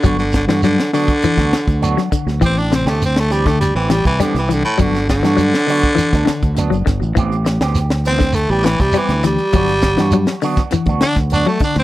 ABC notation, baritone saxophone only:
X:1
M:4/4
L:1/16
Q:1/4=101
K:G
V:1 name="Baritone saxophone" clef=bass
D, D, D, D, D,2 D,8 z2 | C D C A, C A, G, A, G, E, G, E, D, E, D, A,, | D,2 D,12 z2 | z6 C2 A, G, E, G, E,2 G,2- |
G,6 z4 D z D A, D C |]